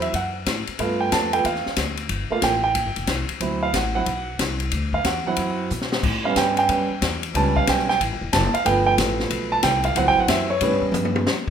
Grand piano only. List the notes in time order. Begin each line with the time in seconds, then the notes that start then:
Already playing: F#3 C4 E4
0.02 E5
0.15 F#5
0.79 A3 B3 F4 F5
1.00 G5
1.13 A5
1.32 A3 B3 F4 G5
1.46 F5
2.30 A3 A#3 F4 F5
2.44 G5
2.64 G5
3.41 F#3 C4 E4
3.63 F5
3.76 F#5
3.95 F#3 C4 E4 F#5
4.94 F5
5.06 F#5
5.26 F#3 C4 E4 F#5
6.24 G3 B3 C#4 F5
6.37 G5
6.59 G5
6.69 G3 B3 C#4
7.35 G3 B3 C#4 A5
7.56 F5
7.70 G5
7.89 G5
8.33 A5
8.54 F5
8.65 F3 A3 B3 G5
8.86 G5
9.52 A5
9.64 G5
9.85 F5
9.96 E3 F#3 C4 F#5
10.08 G5
10.20 F#5
10.29 E5
10.50 C#5
10.62 C#3 G3 B3